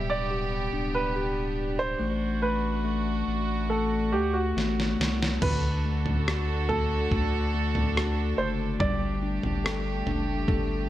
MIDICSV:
0, 0, Header, 1, 6, 480
1, 0, Start_track
1, 0, Tempo, 849858
1, 1132, Time_signature, 4, 2, 24, 8
1, 4021, Tempo, 841515
1, 6172, End_track
2, 0, Start_track
2, 0, Title_t, "Grand piano"
2, 0, Program_c, 0, 0
2, 54, Note_on_c, 0, 74, 79
2, 534, Note_on_c, 0, 71, 79
2, 547, Note_off_c, 0, 74, 0
2, 1011, Note_on_c, 0, 72, 93
2, 1026, Note_off_c, 0, 71, 0
2, 1368, Note_on_c, 0, 71, 75
2, 1381, Note_off_c, 0, 72, 0
2, 2068, Note_off_c, 0, 71, 0
2, 2088, Note_on_c, 0, 69, 66
2, 2315, Note_off_c, 0, 69, 0
2, 2330, Note_on_c, 0, 67, 68
2, 2449, Note_on_c, 0, 66, 58
2, 2458, Note_off_c, 0, 67, 0
2, 2796, Note_off_c, 0, 66, 0
2, 3061, Note_on_c, 0, 71, 72
2, 3777, Note_on_c, 0, 69, 87
2, 3803, Note_off_c, 0, 71, 0
2, 4740, Note_on_c, 0, 72, 82
2, 4768, Note_off_c, 0, 69, 0
2, 4795, Note_off_c, 0, 72, 0
2, 4979, Note_on_c, 0, 74, 86
2, 6172, Note_off_c, 0, 74, 0
2, 6172, End_track
3, 0, Start_track
3, 0, Title_t, "String section"
3, 0, Program_c, 1, 48
3, 0, Note_on_c, 1, 59, 65
3, 0, Note_on_c, 1, 62, 57
3, 0, Note_on_c, 1, 67, 73
3, 1112, Note_off_c, 1, 67, 0
3, 1113, Note_off_c, 1, 59, 0
3, 1131, Note_on_c, 1, 57, 65
3, 1131, Note_on_c, 1, 66, 74
3, 3040, Note_off_c, 1, 62, 0
3, 3043, Note_off_c, 1, 57, 0
3, 3043, Note_off_c, 1, 66, 0
3, 3063, Note_on_c, 1, 62, 56
3, 3064, Note_on_c, 1, 50, 66
3, 3065, Note_on_c, 1, 69, 75
3, 3067, Note_on_c, 1, 66, 58
3, 4964, Note_off_c, 1, 50, 0
3, 4965, Note_off_c, 1, 66, 0
3, 4965, Note_off_c, 1, 69, 0
3, 4982, Note_on_c, 1, 57, 68
3, 4982, Note_on_c, 1, 67, 75
3, 6172, Note_off_c, 1, 57, 0
3, 6172, Note_off_c, 1, 62, 0
3, 6172, Note_off_c, 1, 67, 0
3, 6172, End_track
4, 0, Start_track
4, 0, Title_t, "Tine electric piano"
4, 0, Program_c, 2, 4
4, 0, Control_c, 2, 64, 127
4, 0, Note_on_c, 2, 47, 62
4, 0, Note_on_c, 2, 55, 45
4, 0, Note_on_c, 2, 59, 53
4, 175, Note_on_c, 2, 67, 53
4, 392, Note_off_c, 2, 55, 0
4, 413, Note_on_c, 2, 62, 47
4, 632, Note_off_c, 2, 59, 0
4, 649, Note_off_c, 2, 67, 0
4, 655, Note_on_c, 2, 67, 54
4, 1108, Note_off_c, 2, 47, 0
4, 1108, Note_off_c, 2, 62, 0
4, 1118, Note_off_c, 2, 67, 0
4, 1127, Note_on_c, 2, 57, 59
4, 1138, Control_c, 2, 64, 0
4, 1229, Control_c, 2, 64, 127
4, 1364, Note_off_c, 2, 57, 0
4, 1370, Note_on_c, 2, 57, 44
4, 1601, Note_off_c, 2, 57, 0
4, 1608, Note_on_c, 2, 57, 49
4, 2084, Note_off_c, 2, 57, 0
4, 2091, Note_on_c, 2, 57, 47
4, 2328, Note_off_c, 2, 57, 0
4, 2334, Note_on_c, 2, 57, 48
4, 2571, Note_off_c, 2, 57, 0
4, 2578, Note_on_c, 2, 57, 50
4, 3048, Note_off_c, 2, 57, 0
4, 3060, Note_on_c, 2, 50, 58
4, 3071, Control_c, 2, 64, 0
4, 3168, Control_c, 2, 64, 127
4, 3304, Note_on_c, 2, 57, 46
4, 3545, Note_on_c, 2, 66, 52
4, 3776, Note_off_c, 2, 57, 0
4, 3783, Note_on_c, 2, 57, 47
4, 4017, Note_off_c, 2, 66, 0
4, 4023, Note_on_c, 2, 66, 47
4, 4256, Note_off_c, 2, 57, 0
4, 4263, Note_on_c, 2, 57, 50
4, 4496, Note_off_c, 2, 66, 0
4, 4503, Note_on_c, 2, 66, 49
4, 4734, Note_off_c, 2, 57, 0
4, 4741, Note_on_c, 2, 57, 47
4, 4958, Note_off_c, 2, 50, 0
4, 4969, Note_off_c, 2, 66, 0
4, 4975, Note_off_c, 2, 57, 0
4, 4984, Note_on_c, 2, 55, 62
4, 4990, Control_c, 2, 64, 0
4, 5078, Control_c, 2, 64, 127
4, 5223, Note_on_c, 2, 62, 48
4, 5461, Note_on_c, 2, 69, 55
4, 5699, Note_off_c, 2, 62, 0
4, 5706, Note_on_c, 2, 62, 52
4, 5934, Note_off_c, 2, 69, 0
4, 5940, Note_on_c, 2, 69, 53
4, 6172, Note_off_c, 2, 55, 0
4, 6172, Note_off_c, 2, 62, 0
4, 6172, Note_off_c, 2, 69, 0
4, 6172, End_track
5, 0, Start_track
5, 0, Title_t, "Sub bass"
5, 0, Program_c, 3, 38
5, 0, Note_on_c, 3, 26, 86
5, 393, Note_off_c, 3, 26, 0
5, 413, Note_on_c, 3, 26, 80
5, 1108, Note_off_c, 3, 26, 0
5, 1131, Note_on_c, 3, 33, 94
5, 1827, Note_off_c, 3, 33, 0
5, 1851, Note_on_c, 3, 33, 80
5, 2336, Note_on_c, 3, 38, 75
5, 2344, Note_off_c, 3, 33, 0
5, 2562, Note_off_c, 3, 38, 0
5, 2578, Note_on_c, 3, 33, 86
5, 2805, Note_off_c, 3, 33, 0
5, 2822, Note_on_c, 3, 36, 79
5, 3046, Note_off_c, 3, 36, 0
5, 3063, Note_on_c, 3, 38, 96
5, 3999, Note_off_c, 3, 38, 0
5, 4018, Note_on_c, 3, 38, 101
5, 4718, Note_off_c, 3, 38, 0
5, 4741, Note_on_c, 3, 30, 80
5, 4965, Note_off_c, 3, 30, 0
5, 4981, Note_on_c, 3, 31, 98
5, 5320, Note_off_c, 3, 31, 0
5, 5342, Note_on_c, 3, 31, 87
5, 5680, Note_off_c, 3, 31, 0
5, 5700, Note_on_c, 3, 30, 93
5, 5923, Note_off_c, 3, 30, 0
5, 5939, Note_on_c, 3, 31, 94
5, 6172, Note_off_c, 3, 31, 0
5, 6172, End_track
6, 0, Start_track
6, 0, Title_t, "Drums"
6, 2586, Note_on_c, 9, 38, 47
6, 2642, Note_off_c, 9, 38, 0
6, 2709, Note_on_c, 9, 38, 48
6, 2766, Note_off_c, 9, 38, 0
6, 2830, Note_on_c, 9, 38, 77
6, 2886, Note_off_c, 9, 38, 0
6, 2951, Note_on_c, 9, 38, 69
6, 3008, Note_off_c, 9, 38, 0
6, 3061, Note_on_c, 9, 43, 84
6, 3061, Note_on_c, 9, 49, 72
6, 3062, Note_on_c, 9, 36, 90
6, 3117, Note_off_c, 9, 43, 0
6, 3117, Note_off_c, 9, 49, 0
6, 3119, Note_off_c, 9, 36, 0
6, 3421, Note_on_c, 9, 43, 52
6, 3477, Note_off_c, 9, 43, 0
6, 3547, Note_on_c, 9, 37, 86
6, 3603, Note_off_c, 9, 37, 0
6, 3780, Note_on_c, 9, 43, 57
6, 3837, Note_off_c, 9, 43, 0
6, 4018, Note_on_c, 9, 36, 78
6, 4019, Note_on_c, 9, 43, 53
6, 4075, Note_off_c, 9, 36, 0
6, 4076, Note_off_c, 9, 43, 0
6, 4381, Note_on_c, 9, 43, 58
6, 4438, Note_off_c, 9, 43, 0
6, 4508, Note_on_c, 9, 37, 90
6, 4565, Note_off_c, 9, 37, 0
6, 4981, Note_on_c, 9, 36, 96
6, 4981, Note_on_c, 9, 43, 89
6, 5038, Note_off_c, 9, 36, 0
6, 5038, Note_off_c, 9, 43, 0
6, 5341, Note_on_c, 9, 43, 55
6, 5398, Note_off_c, 9, 43, 0
6, 5469, Note_on_c, 9, 37, 97
6, 5526, Note_off_c, 9, 37, 0
6, 5702, Note_on_c, 9, 43, 55
6, 5760, Note_off_c, 9, 43, 0
6, 5938, Note_on_c, 9, 36, 79
6, 5940, Note_on_c, 9, 43, 54
6, 5995, Note_off_c, 9, 36, 0
6, 5997, Note_off_c, 9, 43, 0
6, 6172, End_track
0, 0, End_of_file